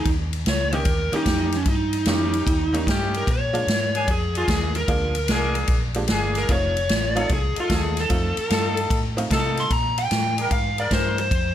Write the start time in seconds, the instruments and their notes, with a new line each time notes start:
0.05 fingered electric bass D#2, kick, ride
0.33 ride
0.46 fingered electric bass C#2, lead electric guitar C#5, snare, ride
0.72 honky-tonk piano D#3 G3 A#3 C#4 D#4, horn section C#4 D#4 G4, lead electric guitar A#4, ride
0.85 fingered electric bass D#2, kick, ride
1.12 honky-tonk piano D#3 G3 A#3 C#4 D#4, horn section C#4 D#4 G4, lead electric guitar D#4, muted fingered electric bass stroke, ride
1.26 fingered electric bass F2, kick, snare, ride
1.52 lead electric guitar C#4, snare, ride
1.65 fingered electric bass G2, lead electric guitar D#4, kick, ride
1.93 ride
2.06 fingered electric bass F2, honky-tonk piano D#3 G3 A#3 C#4 D#4, horn section C#4 D#4 G4, snare, ride
2.33 ride
2.46 fingered electric bass D#2, kick, ride
2.73 honky-tonk piano D#3 G3 A#3 C#4 D#4, ride
2.87 fingered electric bass G2, horn section C#4 D#4 G4, kick, snare, ride
3.14 lead electric guitar A#4, ride
3.27 fingered electric bass A#2, lead electric guitar C#5, kick, ride
3.53 honky-tonk piano F3 G#3 A#3 D4 F4, ride
3.67 fingered electric bass G#2, snare, ride
3.95 horn section A#3 D4 G#4, ride
4.08 fingered electric bass F2, lead electric guitar G#4, kick, ride
4.35 horn section A#3 D4 G#4, lead electric guitar F4, ride
4.48 fingered electric bass D#2, lead electric guitar G#4, kick, snare, ride
4.75 lead electric guitar A#4, ride
4.88 fingered electric bass D2, honky-tonk piano F3 G#3 A#3 D4 F4, kick, ride
5.15 ride
5.28 fingered electric bass C2, horn section A#3 D4 G#4, snare, ride
5.55 ride
5.68 fingered electric bass A#1, kick, ride
5.94 honky-tonk piano F3 G#3 A#3 D4 G4, ride
6.08 fingered electric bass G1, horn section A#3 D4 G#4, snare, ride
6.35 lead electric guitar A#4, snare, ride
6.49 fingered electric bass F1, honky-tonk piano F3 A3 C4 D#4 F4, lead electric guitar C#5, kick, ride
6.77 ride
6.89 fingered electric bass A1, snare, ride
7.15 honky-tonk piano F3 A3 C4 D#4 F4, horn section D#4 F4 A4, ride
7.29 fingered electric bass C2, lead electric guitar G#4, kick, ride
7.56 horn section D#4 F4 A4, muted fingered electric bass stroke, ride
7.60 lead electric guitar F4
7.70 fingered electric bass D#2, kick, snare, ride
7.74 lead electric guitar G#4
7.97 lead electric guitar A4, snare, ride
8.09 fingered electric bass F2, honky-tonk piano F3 A3 C4 D#4 F4, kick, ride
8.37 muted fingered electric bass stroke, ride
8.50 fingered electric bass G2, horn section D#4 F4 A4, snare, ride
8.77 ride
8.90 fingered electric bass A2, kick, ride
9.17 honky-tonk piano F3 A3 C4 D#4 F4, ride
9.30 fingered electric bass C3, horn section D#4 F4 A4, kick, snare, ride
9.57 lead electric guitar C6, snare, ride
9.70 fingered electric bass A#2, lead electric guitar A#5, kick, ride
9.98 lead electric guitar G5, ride
10.11 fingered electric bass A2, snare, ride
10.38 horn section D4 G#4 A#4, ride
10.51 fingered electric bass G#2, lead electric guitar F5, kick, ride
10.78 horn section D4 G#4 A#4, lead electric guitar D5, ride
10.91 fingered electric bass G2, lead electric guitar C5, kick, snare, ride
11.18 lead electric guitar C5, ride
11.31 fingered electric bass F2, kick, ride